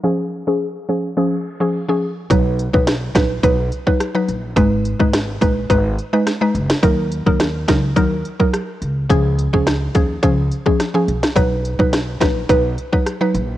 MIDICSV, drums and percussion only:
0, 0, Header, 1, 2, 480
1, 0, Start_track
1, 0, Tempo, 566038
1, 35, Time_signature, 4, 2, 24, 8
1, 11512, End_track
2, 0, Start_track
2, 0, Title_t, "Drums"
2, 1954, Note_on_c, 9, 42, 84
2, 1955, Note_on_c, 9, 36, 126
2, 2039, Note_off_c, 9, 42, 0
2, 2040, Note_off_c, 9, 36, 0
2, 2198, Note_on_c, 9, 42, 52
2, 2282, Note_off_c, 9, 42, 0
2, 2324, Note_on_c, 9, 36, 90
2, 2409, Note_off_c, 9, 36, 0
2, 2435, Note_on_c, 9, 38, 114
2, 2437, Note_on_c, 9, 42, 73
2, 2443, Note_on_c, 9, 37, 99
2, 2520, Note_off_c, 9, 38, 0
2, 2522, Note_off_c, 9, 42, 0
2, 2528, Note_off_c, 9, 37, 0
2, 2674, Note_on_c, 9, 42, 62
2, 2676, Note_on_c, 9, 38, 122
2, 2678, Note_on_c, 9, 36, 100
2, 2683, Note_on_c, 9, 37, 97
2, 2759, Note_off_c, 9, 42, 0
2, 2760, Note_off_c, 9, 38, 0
2, 2762, Note_off_c, 9, 36, 0
2, 2768, Note_off_c, 9, 37, 0
2, 2913, Note_on_c, 9, 36, 102
2, 2914, Note_on_c, 9, 42, 85
2, 2998, Note_off_c, 9, 36, 0
2, 2999, Note_off_c, 9, 42, 0
2, 3155, Note_on_c, 9, 42, 45
2, 3240, Note_off_c, 9, 42, 0
2, 3282, Note_on_c, 9, 36, 87
2, 3367, Note_off_c, 9, 36, 0
2, 3396, Note_on_c, 9, 37, 101
2, 3397, Note_on_c, 9, 42, 82
2, 3481, Note_off_c, 9, 37, 0
2, 3482, Note_off_c, 9, 42, 0
2, 3635, Note_on_c, 9, 42, 50
2, 3720, Note_off_c, 9, 42, 0
2, 3874, Note_on_c, 9, 42, 85
2, 3875, Note_on_c, 9, 36, 125
2, 3959, Note_off_c, 9, 42, 0
2, 3960, Note_off_c, 9, 36, 0
2, 4117, Note_on_c, 9, 42, 52
2, 4202, Note_off_c, 9, 42, 0
2, 4244, Note_on_c, 9, 36, 91
2, 4329, Note_off_c, 9, 36, 0
2, 4356, Note_on_c, 9, 38, 123
2, 4358, Note_on_c, 9, 42, 74
2, 4364, Note_on_c, 9, 37, 97
2, 4441, Note_off_c, 9, 38, 0
2, 4443, Note_off_c, 9, 42, 0
2, 4449, Note_off_c, 9, 37, 0
2, 4594, Note_on_c, 9, 42, 65
2, 4598, Note_on_c, 9, 36, 100
2, 4679, Note_off_c, 9, 42, 0
2, 4683, Note_off_c, 9, 36, 0
2, 4833, Note_on_c, 9, 36, 100
2, 4835, Note_on_c, 9, 42, 82
2, 4918, Note_off_c, 9, 36, 0
2, 4920, Note_off_c, 9, 42, 0
2, 5076, Note_on_c, 9, 42, 45
2, 5161, Note_off_c, 9, 42, 0
2, 5316, Note_on_c, 9, 37, 100
2, 5316, Note_on_c, 9, 38, 69
2, 5317, Note_on_c, 9, 42, 79
2, 5401, Note_off_c, 9, 37, 0
2, 5401, Note_off_c, 9, 38, 0
2, 5402, Note_off_c, 9, 42, 0
2, 5557, Note_on_c, 9, 42, 53
2, 5641, Note_off_c, 9, 42, 0
2, 5682, Note_on_c, 9, 38, 125
2, 5690, Note_on_c, 9, 37, 93
2, 5767, Note_off_c, 9, 38, 0
2, 5774, Note_off_c, 9, 37, 0
2, 5795, Note_on_c, 9, 36, 120
2, 5795, Note_on_c, 9, 42, 81
2, 5880, Note_off_c, 9, 36, 0
2, 5880, Note_off_c, 9, 42, 0
2, 6037, Note_on_c, 9, 42, 52
2, 6122, Note_off_c, 9, 42, 0
2, 6164, Note_on_c, 9, 36, 87
2, 6248, Note_off_c, 9, 36, 0
2, 6274, Note_on_c, 9, 38, 118
2, 6276, Note_on_c, 9, 42, 72
2, 6282, Note_on_c, 9, 37, 101
2, 6359, Note_off_c, 9, 38, 0
2, 6361, Note_off_c, 9, 42, 0
2, 6367, Note_off_c, 9, 37, 0
2, 6514, Note_on_c, 9, 42, 61
2, 6515, Note_on_c, 9, 38, 117
2, 6517, Note_on_c, 9, 36, 102
2, 6523, Note_on_c, 9, 37, 97
2, 6598, Note_off_c, 9, 42, 0
2, 6600, Note_off_c, 9, 38, 0
2, 6602, Note_off_c, 9, 36, 0
2, 6608, Note_off_c, 9, 37, 0
2, 6753, Note_on_c, 9, 36, 100
2, 6754, Note_on_c, 9, 42, 83
2, 6838, Note_off_c, 9, 36, 0
2, 6839, Note_off_c, 9, 42, 0
2, 6996, Note_on_c, 9, 42, 46
2, 7081, Note_off_c, 9, 42, 0
2, 7122, Note_on_c, 9, 36, 90
2, 7206, Note_off_c, 9, 36, 0
2, 7237, Note_on_c, 9, 37, 103
2, 7238, Note_on_c, 9, 42, 81
2, 7321, Note_off_c, 9, 37, 0
2, 7322, Note_off_c, 9, 42, 0
2, 7477, Note_on_c, 9, 42, 52
2, 7561, Note_off_c, 9, 42, 0
2, 7715, Note_on_c, 9, 36, 116
2, 7715, Note_on_c, 9, 42, 79
2, 7800, Note_off_c, 9, 36, 0
2, 7800, Note_off_c, 9, 42, 0
2, 7957, Note_on_c, 9, 42, 53
2, 8042, Note_off_c, 9, 42, 0
2, 8084, Note_on_c, 9, 36, 85
2, 8169, Note_off_c, 9, 36, 0
2, 8196, Note_on_c, 9, 37, 70
2, 8196, Note_on_c, 9, 38, 121
2, 8198, Note_on_c, 9, 42, 75
2, 8204, Note_off_c, 9, 37, 0
2, 8204, Note_on_c, 9, 37, 101
2, 8281, Note_off_c, 9, 38, 0
2, 8283, Note_off_c, 9, 42, 0
2, 8289, Note_off_c, 9, 37, 0
2, 8434, Note_on_c, 9, 42, 65
2, 8438, Note_on_c, 9, 36, 103
2, 8519, Note_off_c, 9, 42, 0
2, 8523, Note_off_c, 9, 36, 0
2, 8673, Note_on_c, 9, 36, 99
2, 8674, Note_on_c, 9, 42, 81
2, 8758, Note_off_c, 9, 36, 0
2, 8759, Note_off_c, 9, 42, 0
2, 8916, Note_on_c, 9, 42, 42
2, 9001, Note_off_c, 9, 42, 0
2, 9042, Note_on_c, 9, 36, 90
2, 9127, Note_off_c, 9, 36, 0
2, 9157, Note_on_c, 9, 37, 99
2, 9157, Note_on_c, 9, 38, 71
2, 9158, Note_on_c, 9, 42, 82
2, 9242, Note_off_c, 9, 37, 0
2, 9242, Note_off_c, 9, 38, 0
2, 9243, Note_off_c, 9, 42, 0
2, 9398, Note_on_c, 9, 42, 53
2, 9482, Note_off_c, 9, 42, 0
2, 9523, Note_on_c, 9, 38, 121
2, 9530, Note_on_c, 9, 37, 92
2, 9608, Note_off_c, 9, 38, 0
2, 9615, Note_off_c, 9, 37, 0
2, 9636, Note_on_c, 9, 36, 120
2, 9636, Note_on_c, 9, 42, 78
2, 9721, Note_off_c, 9, 36, 0
2, 9721, Note_off_c, 9, 42, 0
2, 9879, Note_on_c, 9, 42, 52
2, 9963, Note_off_c, 9, 42, 0
2, 10005, Note_on_c, 9, 36, 87
2, 10089, Note_off_c, 9, 36, 0
2, 10116, Note_on_c, 9, 38, 118
2, 10118, Note_on_c, 9, 42, 69
2, 10124, Note_on_c, 9, 37, 102
2, 10201, Note_off_c, 9, 38, 0
2, 10203, Note_off_c, 9, 42, 0
2, 10209, Note_off_c, 9, 37, 0
2, 10355, Note_on_c, 9, 42, 64
2, 10357, Note_on_c, 9, 38, 114
2, 10358, Note_on_c, 9, 36, 104
2, 10364, Note_on_c, 9, 37, 96
2, 10440, Note_off_c, 9, 42, 0
2, 10441, Note_off_c, 9, 38, 0
2, 10443, Note_off_c, 9, 36, 0
2, 10449, Note_off_c, 9, 37, 0
2, 10594, Note_on_c, 9, 36, 104
2, 10595, Note_on_c, 9, 42, 82
2, 10678, Note_off_c, 9, 36, 0
2, 10680, Note_off_c, 9, 42, 0
2, 10836, Note_on_c, 9, 42, 45
2, 10921, Note_off_c, 9, 42, 0
2, 10962, Note_on_c, 9, 36, 87
2, 11047, Note_off_c, 9, 36, 0
2, 11077, Note_on_c, 9, 37, 96
2, 11078, Note_on_c, 9, 42, 79
2, 11161, Note_off_c, 9, 37, 0
2, 11162, Note_off_c, 9, 42, 0
2, 11316, Note_on_c, 9, 42, 50
2, 11401, Note_off_c, 9, 42, 0
2, 11512, End_track
0, 0, End_of_file